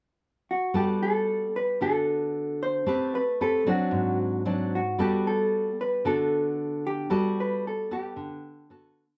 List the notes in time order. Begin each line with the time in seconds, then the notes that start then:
0.51 F#4
0.74 G3 B3 F#4 G4 A4
1.03 A4
1.56 B4
1.81 D3 B3 F#4 A4
2.63 C5
2.86 A3 C4 G4 B4
3.15 B4
3.41 C4 G4 A4 B4
3.66 F#3 C4 D4 F#4
3.91 G#2
4.45 F#3 C4 D4
4.75 F#4
4.98 G3 B3 F#4 G4 A4
5.27 A4
5.81 B4
6.05 D3 B3 F#4 A4
6.87 G4
7.10 G3 B3 F#4 A4
7.40 B4
7.67 A4
7.91 B3 G4 A4
8.16 D3
8.70 B3 F#4 A4